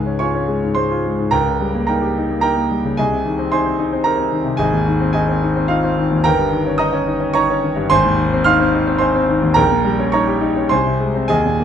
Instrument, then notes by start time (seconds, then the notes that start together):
grand piano
Already playing: C#2 G#2 G#3 G#4 F5 G#5
0.06 C#4
0.19 F4 C#5 G#5 C#6
0.35 C#4
0.48 G#3
0.62 G#2
0.75 G#3 C5 C6
0.91 F4
1.05 G#3
1.18 G#2
1.31 C#2 A#4 G5 A#5
1.47 C#3
1.60 G3
1.75 A#3
1.87 D#4 A#4 G5 A#5
2.02 G4
2.18 D#4
2.30 A#3
2.41 D#4 A#4 G5 A#5
2.56 A#3
2.71 G3
2.84 C#3
2.97 C2 G#4 D#5 G#5
3.13 C3
3.25 D#3
3.39 C4
3.52 D#4 C5 G#5 C6
3.66 C4
3.79 D#4
3.92 C4
4.04 D#4 A#4 A#5
4.18 C4
4.32 D#3
4.45 C3
4.57 G#1 G#4 D#5 G#5
4.72 D#2
4.86 D#3
5.00 C4
5.13 D#4 G#4 D#5 G#5
5.28 C4
5.43 D#4
5.56 C4
5.68 D#4 F4 F5
5.84 C4
5.97 D#3
6.11 D#2
6.24 G1 A#4 G5 A#5
6.39 G2
6.52 D#3
6.66 C#4
6.78 D#4 D#5 A#5 D#6
6.93 C#4
7.07 D#4
7.20 C#4
7.34 D#4 C#5 A#5 C#6
7.50 C#4
7.63 D#3
7.76 G2
7.90 G#1 C5 G#5 C6
8.05 D#2
8.18 D#3
8.32 C4
8.44 D#4 F5 C6 F6
8.60 C4
8.74 D#4
8.87 C4
8.98 D#4 C5 G#5 C6
9.14 C4
9.28 D#3
9.42 D#2
9.54 A#1 A#4 G5 A#5
9.71 A#2
9.85 G3
9.99 C#4
10.12 D#4 C#5 A#5 C#6
10.27 G4
10.41 D#4
10.57 C#4
10.69 C2 C5 G#5 C6
10.86 C3
11.00 G#3
11.15 C4
11.28 D#2 G#4 D#5 G#5
11.45 A#2
11.60 A#3